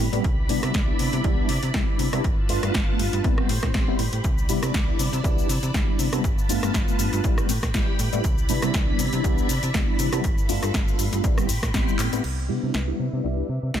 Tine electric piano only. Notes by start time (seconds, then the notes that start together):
0.12 G3 B3 C4 E4
0.49 G3 B3 D4 E4
0.88 G3 B3 D4 E4
1.24 G3 B3 D4 E4
1.74 G3 B3 D4 E4
2.13 G3 B3 D4 E4
2.49 A3 B3 D4 F4
2.88 A3 B3 D4 F4
3.24 G3 B3 C4 E4
3.62 G3 B3 C4 E4
3.88 G3 B3 C4 E4
4.49 G3 B3 D4 E4
4.88 G3 B3 D4 E4
5.24 G3 B3 D4 E4
5.74 G3 B3 D4 E4
6.12 G3 B3 D4 E4
6.49 A3 B3 D4 F4
6.87 A3 B3 D4 F4
7.24 G3 B3 C4 E4
7.74 G3 B3 C4 E4
8.13 G3 B3 C4 E4
8.49 G3 B3 D4 E4
8.88 G3 B3 D4 E4
9.24 G3 B3 D4 E4
9.74 G3 B3 D4 E4
10.12 G3 B3 D4 E4
10.48 A3 B3 D4 F4
10.88 A3 B3 D4 F4
11.24 G3 B3 C4 E4
11.74 G3 B3 C4 E4
12.13 G3 B3 C4 E4
12.49 G3 B3 D4 E4
12.87 G3 B3 D4 E4
13.24 G3 B3 D4 E4
13.74 G3 B3 D4 E4